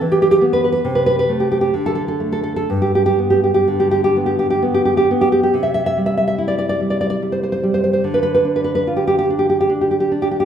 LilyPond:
\new Staff \with { instrumentName = "Nylon-string guitar" } { \time 3/4 \key g \major \tempo 4 = 70 << { r32 g'32 g'32 g'32 r32 b'32 b'32 b'32 r32 b'32 b'32 b'32 r32 g'32 g'32 g'32 r32 a'32 a'32 a'32 r32 a'32 a'32 a'32 | r32 g'32 g'32 g'32 r32 g'32 g'32 g'32 r32 g'32 g'32 g'32 r32 g'32 g'32 g'32 r32 g'32 g'32 g'32 r32 g'32 g'32 g'32 | \key c \major r32 e''32 e''32 e''32 r32 e''32 e''32 e''32 r32 d''32 d''32 d''32 r32 d''32 d''32 d''32 r32 c''32 c''32 c''32 r32 c''32 c''32 c''32 | r32 b'32 b'32 b'32 r32 b'32 b'32 b'32 r32 g'32 g'32 g'32 r32 g'32 g'32 g'32 r32 g'32 g'32 g'32 r32 g'32 g'32 g'32 | } \\ { e8 b8 c8 a8 d8 a8 | g,8 b8 d8 b8 b8 b8 | c8 g8 e'8 g8 g8 g8 | d8 d'8 f'8 d'8 d'8 d'8 | } >> }